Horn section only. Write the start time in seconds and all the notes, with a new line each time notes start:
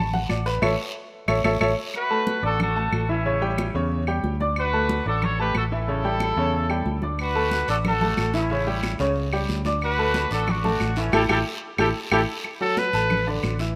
1.96 F#4 B4
2.45 F#4 A4
2.62 F#4 A4
3.10 C#4 E4
4.59 F#4 B4
5.07 F#4 A4
5.24 A4 C#5
5.40 G4 B4
5.57 F#4 A4
5.73 E4 A4
7.20 F#4 B4
7.70 F#4 A4
7.86 F#4 A4
8.35 C#4 E4
9.83 F#4 B4
10.33 F#4 A4
10.49 D4 F#4
10.99 A3 C#4
11.14 E4 G4 A4
11.30 E4 G4 A4
11.80 E4 G4 A4
12.13 E4 G4 A4